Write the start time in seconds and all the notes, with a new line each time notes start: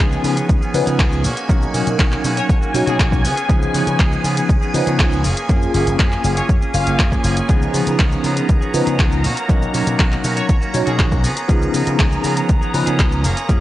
Already playing: F3 B3 C#4 D#4 G#4 G#5
0.00 C#2 F3 B3 C#4 G#4
0.12 cabasa
0.23 C#3 F3 B3 C#4 G#4, open hi-hat, cabasa
0.36 B3 C#4 G#4, closed hi-hat, cabasa
0.49 C#2, kick, closed hi-hat, cabasa
0.61 B3 C#4 G#4, cabasa
0.74 C#3 F3 B3 C#4 D#4 B4, open hi-hat, cabasa
0.86 C#3 B3 C#4 G#4, closed hi-hat, cabasa
0.99 C#2 F3 B3 C#4 G#4, kick, clap, closed hi-hat, cabasa
1.12 cabasa
1.23 B2 D#3 A#3 C#4 F#4, open hi-hat, cabasa
1.36 A#3 C#4 F#4, closed hi-hat, cabasa
1.49 B1 D#3 F#3 A#3 C#4 D#4 F#4 A#4, kick, closed hi-hat, cabasa
1.62 cabasa
1.73 B2 D#3 A#3 C#4 F#4, open hi-hat, cabasa
1.87 B2, closed hi-hat, cabasa
1.99 B1 D#3 A#3 C#4 F#4, kick, clap, closed hi-hat, cabasa
2.12 clap, cabasa
2.23 B2 D#3 A#3 C#4 F#4, open hi-hat, cabasa
2.36 A#3 C#4 F#4 C#5, closed hi-hat, cabasa
2.49 B1 C#5, kick, closed hi-hat, cabasa
2.61 A#3 C#4 F#4, muted slap bass stroke, cabasa
2.74 B2 F#3 C#4 D#4 C#5, open hi-hat, cabasa
2.86 B2 A#3 C#4 F#4 G#4, closed hi-hat, cabasa
2.98 B1 D#3 A#3 C#4 F#4 G#4, kick, clap, closed hi-hat, cabasa
3.12 kick, cabasa
3.23 C#3 F3 B3 C#4 G#4, open hi-hat, cabasa
3.36 B3 C#4 G#4, closed hi-hat, cabasa
3.48 C#2 F3 B3 C#4 D#4 G#4, kick, closed hi-hat, cabasa
3.62 cabasa
3.73 C#3 F3 B3 C#4 G#4, open hi-hat, cabasa
3.87 C#3, closed hi-hat, cabasa
3.99 C#2 F3 B3 C#4 G#4, kick, clap, closed hi-hat, cabasa
4.12 cabasa
4.23 C#3 F3 B3 C#4 G#4, open hi-hat, cabasa
4.36 B3 C#4 G#4, closed hi-hat, cabasa
4.49 C#2, kick, closed hi-hat, cabasa
4.61 B3 C#4 G#4, cabasa
4.74 C#3 F3 B3 C#4 D#4 B4, open hi-hat, cabasa
4.86 C#3 B3 C#4 G#4, closed hi-hat, cabasa
4.99 C#2 F3 B3 C#4 G#4, kick, clap, closed hi-hat, cabasa
5.12 cabasa
5.23 F#1 F3 A#3 C#4 G#4, open hi-hat, cabasa
5.36 A#3 C#4 G#4, closed hi-hat, cabasa
5.48 F#2 F3 A#3 C#4 F4 G#4, kick, closed hi-hat, cabasa
5.62 cabasa
5.73 F#1 F3 A#3 C#4 G#4, open hi-hat, cabasa
5.87 F#1, closed hi-hat, cabasa
5.98 F#2 F3 A#3 C#4 G#4, kick, clap, closed hi-hat, cabasa
6.12 clap, cabasa
6.23 F#1 F3 A#3 C#4 G#4, open hi-hat, cabasa
6.36 A#3 C#4 G#4 C#5, closed hi-hat, cabasa
6.49 F#2 C#5, kick, closed hi-hat, cabasa
6.61 A#3 C#4 G#4, muted slap bass stroke, cabasa
6.74 F#1 A#3 C#4 F4 C#5 F5, open hi-hat, cabasa
6.86 F#1 A#3 C#4 G#4, closed hi-hat, cabasa
6.98 F#2 F3 A#3 C#4 G#4, kick, clap, closed hi-hat, cabasa
7.12 kick, cabasa
7.23 F#1 F3 A#3 C#4 G#4, open hi-hat, cabasa
7.36 A#3 C#4 G#4, closed hi-hat, cabasa
7.48 C#2 F3 B3 C#4 D#4 G#4 A#5, kick, closed hi-hat, cabasa
7.62 cabasa
7.73 C#3 F3 B3 C#4 G#4, open hi-hat, cabasa
7.87 C#3, closed hi-hat, cabasa
7.98 C#2 F3 G#4, kick, clap, closed hi-hat, cabasa
8.12 cabasa
8.23 C#3 F3 B3 C#4 G#4, open hi-hat, cabasa
8.36 B3 C#4 G#4, closed hi-hat, cabasa
8.49 C#2, kick, closed hi-hat, cabasa
8.61 B3 C#4 G#4, cabasa
8.74 C#3 F3 B3 C#4 D#4 B4, open hi-hat, cabasa
8.86 C#3 B3 C#4 G#4, closed hi-hat, cabasa
8.98 C#2 F3 B3 G#4, kick, clap, closed hi-hat, cabasa
9.12 cabasa
9.23 B2 D#3 A#3 C#4 F#4, open hi-hat, cabasa
9.36 A#3 C#4 F#4, closed hi-hat, cabasa
9.48 B1 D#3 F#3 A#3 C#4 D#4 F#4 A#4, kick, closed hi-hat, cabasa
9.62 cabasa
9.73 B2 D#3 A#3 C#4 F#4, open hi-hat, cabasa
9.87 B2, closed hi-hat, cabasa
9.98 B1 D#3 A#3 C#4 F#4, kick, clap, closed hi-hat, cabasa
10.12 clap, cabasa
10.23 B2 D#3 A#3 C#4 F#4, open hi-hat, cabasa
10.36 A#3 C#4 F#4 C#5, closed hi-hat, cabasa
10.49 B1 C#5, kick, closed hi-hat, cabasa
10.61 A#3 C#4 F#4, muted slap bass stroke, cabasa
10.74 B2 F#3 C#4 D#4 C#5, open hi-hat, cabasa
10.86 B2 A#3 C#4 F#4 G#4, closed hi-hat, cabasa
10.98 B1 D#3 A#3 C#4 F#4 G#4, kick, clap, closed hi-hat, cabasa
11.12 kick, cabasa
11.23 C#3 F3 B3 C#4 G#4, open hi-hat, cabasa
11.36 B3 C#4 G#4, closed hi-hat, cabasa
11.48 C#2 F3 B3 C#4 D#4 G#4, kick, closed hi-hat, cabasa
11.62 cabasa
11.73 C#3 F3 B3 C#4 G#4, open hi-hat, cabasa
11.87 C#3, closed hi-hat, cabasa
11.99 C#2 F3 C#4 G#4, kick, clap, closed hi-hat, cabasa
12.12 cabasa
12.23 C#3 F3 B3 C#4 G#4, open hi-hat, cabasa
12.36 B3 C#4 G#4, closed hi-hat, cabasa
12.49 C#2, kick, closed hi-hat, cabasa
12.61 B3 C#4 G#4, cabasa
12.74 C#3 F3 B3 C#4 D#4 B4, open hi-hat, cabasa
12.86 C#3 B3 C#4 G#4, closed hi-hat, cabasa
12.99 C#2 F3 B3 C#4 G#4, kick, clap, closed hi-hat, cabasa
13.12 cabasa
13.23 F#1 F3 A#3 C#4 G#4, open hi-hat, cabasa
13.36 A#3 C#4 G#4, closed hi-hat, cabasa
13.49 F#2 F3 A#3 C#4 F4 G#4, kick, closed hi-hat, cabasa